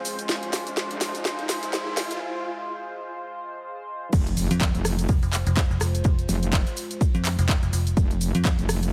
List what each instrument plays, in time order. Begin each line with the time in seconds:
Already playing: analog synth pad G#3 F4 C5, riser
0.05 open hi-hat, shaker
0.19 closed hi-hat, shaker
0.29 wobble bass F1, snare, shaker
0.43 wobble bass F1, closed hi-hat
0.53 snare, open hi-hat, shaker
0.67 closed hi-hat, shaker
0.77 snare, shaker
0.91 wobble bass F1, closed hi-hat
1.01 snare, open hi-hat, shaker
1.15 closed hi-hat, shaker
1.25 snare, shaker
1.39 closed hi-hat
1.49 snare, open hi-hat, shaker
1.63 closed hi-hat, shaker
1.73 snare, shaker
1.87 wobble bass D#1
1.97 snare, open hi-hat, shaker
2.11 closed hi-hat, shaker
4.13 wobble bass F1, analog synth pad G#3 F4 C5, kick, crash, ride, impact, shaker
4.27 closed hi-hat, shaker
4.37 open hi-hat, ride, shaker
4.51 fm bass F2, closed hi-hat, shaker
4.60 kick, snare, clap, ride, shaker
4.75 wobble bass F1, closed hi-hat, shaker
4.85 cross-stick, open hi-hat, shaker
4.98 closed hi-hat, ride, shaker
5.09 fm bass F1, kick, ride, shaker
5.23 fm bass F1, closed hi-hat, shaker
5.32 clap, open hi-hat, ride, shaker
5.47 fm bass F1, closed hi-hat, shaker
5.56 kick, snare, clap, ride, shaker
5.71 fm bass F1, shaker
5.80 fm bass F1, cross-stick, snare, open hi-hat, ride, shaker
5.95 closed hi-hat, shaker
6.04 fm bass F1, kick, ride, shaker
6.19 closed hi-hat, shaker
6.28 wobble bass F1, snare, open hi-hat, ride, shaker
6.43 closed hi-hat, ride, shaker
6.53 kick, snare, clap, ride, shaker
6.67 closed hi-hat, shaker
6.76 open hi-hat, ride, shaker
6.91 closed hi-hat, shaker
7.01 kick, ride, shaker
7.14 fm bass F2, closed hi-hat, ride, shaker
7.25 snare, clap, open hi-hat, ride, shaker
7.39 fm bass F1, snare, closed hi-hat, shaker
7.49 kick, snare, clap, ride, shaker
7.63 fm bass F1, closed hi-hat, shaker
7.73 fm bass F1, open hi-hat, ride, shaker
7.87 closed hi-hat, shaker
7.97 wobble bass F1, analog synth pad F5, kick, ride, shaker
8.11 closed hi-hat, shaker
8.21 open hi-hat, ride, shaker
8.35 fm bass F2, closed hi-hat, shaker
8.45 kick, snare, clap, ride, shaker
8.59 wobble bass F1, closed hi-hat, shaker
8.69 cross-stick, open hi-hat, shaker
8.82 closed hi-hat, ride, shaker